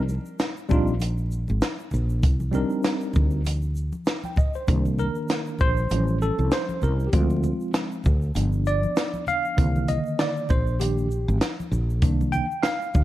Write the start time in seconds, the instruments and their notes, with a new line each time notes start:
Already playing: fretless electric bass C2
0.09 high conga, shaker
0.25 shaker
0.39 snare, closed hi-hat, shaker
0.57 shaker
0.69 tine electric piano G3 C4 D4 D#4, low conga, shaker
0.71 fretless electric bass A#1, tine electric piano F4, kick, shaker
0.87 shaker
1.00 closed hi-hat, high conga, shaker
1.18 shaker
1.31 shaker
1.48 fretless electric bass G#1, high conga, shaker
1.61 snare, closed hi-hat, shaker
1.79 shaker
1.91 fretless electric bass A#1, low conga, shaker
1.94 shaker
2.10 shaker
2.23 fretless electric bass C2, kick, closed hi-hat, shaker
2.40 high conga, shaker
2.52 tine electric piano G3 C4 D4 D#4 A#4, high conga, low conga, shaker
2.70 shaker
2.83 snare, closed hi-hat, shaker
3.01 shaker
3.13 low conga, shaker
3.15 fretless electric bass D2, kick, shaker
3.30 shaker
3.45 closed hi-hat, high conga, shaker
3.62 shaker
3.75 shaker
3.77 shaker
3.92 high conga, shaker
4.05 snare, closed hi-hat, shaker
4.24 tine electric piano G5, high conga, shaker
4.36 tine electric piano D#5, kick, low conga, shaker
4.38 shaker
4.54 tine electric piano C5, shaker
4.67 fretless electric bass C2, tine electric piano D#3 A#3 D4, kick, closed hi-hat, shaker
4.85 high conga, shaker
4.98 tine electric piano A#4, low conga, shaker
5.15 shaker
5.28 snare, closed hi-hat, shaker
5.46 shaker
5.59 low conga, shaker
5.60 fretless electric bass A#1, tine electric piano C5, kick, shaker
5.77 shaker
5.90 fretless electric bass A1, tine electric piano F3 G3 C#4, closed hi-hat, shaker
6.08 shaker
6.21 tine electric piano A4, shaker
6.38 fretless electric bass C2, high conga, shaker
6.51 tine electric piano C5, snare, closed hi-hat, shaker
6.69 high conga, shaker
6.82 fretless electric bass C2, tine electric piano A#4, low conga, shaker
6.83 shaker
7.00 shaker
7.07 tine electric piano G4
7.12 fretless electric bass D2, tine electric piano F3 G#3 C4 F4, kick, closed hi-hat, shaker
7.30 high conga, shaker
7.43 low conga, shaker
7.61 shaker
7.74 snare, closed hi-hat, shaker
7.92 shaker
8.04 fretless electric bass D2, kick, low conga, shaker
8.22 shaker
8.35 fretless electric bass G1, tine electric piano F3 B3 D4, closed hi-hat, shaker
8.52 shaker
8.65 tine electric piano D5, shaker
8.83 high conga, shaker
8.96 snare, closed hi-hat, shaker
9.14 high conga, shaker
9.27 tine electric piano F5, low conga, shaker
9.45 shaker
9.57 fretless electric bass C2, tine electric piano D3 D#3 A#3, kick, closed hi-hat, shaker
9.76 high conga, shaker
9.88 tine electric piano D#5, closed hi-hat, low conga, shaker
10.06 shaker
10.19 tine electric piano D5, snare, closed hi-hat, shaker
10.37 shaker
10.49 fretless electric bass A#1, tine electric piano C5, kick, low conga, shaker
10.67 shaker
10.79 tine electric piano D#3 A#3 D4 G4, closed hi-hat, shaker
10.98 shaker
11.11 shaker
11.28 fretless electric bass G#1, high conga, shaker
11.41 snare, closed hi-hat, shaker
11.60 high conga, shaker
11.71 fretless electric bass A#1, low conga, shaker
11.90 shaker
12.02 fretless electric bass C2, tine electric piano D#3 A#3 D4, kick, closed hi-hat, shaker
12.21 high conga, shaker
12.32 tine electric piano G5, low conga, shaker
12.51 shaker
12.63 tine electric piano F5, snare, closed hi-hat, shaker
12.82 shaker
12.94 fretless electric bass D2, kick, low conga, shaker